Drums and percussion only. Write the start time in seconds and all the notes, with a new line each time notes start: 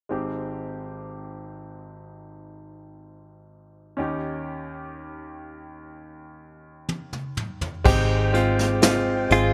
6.89 high tom
7.13 mid tom
7.37 mid tom
7.61 floor tom
7.86 kick, crash
8.34 closed hi-hat
8.59 snare
8.82 snare, closed hi-hat
9.30 closed hi-hat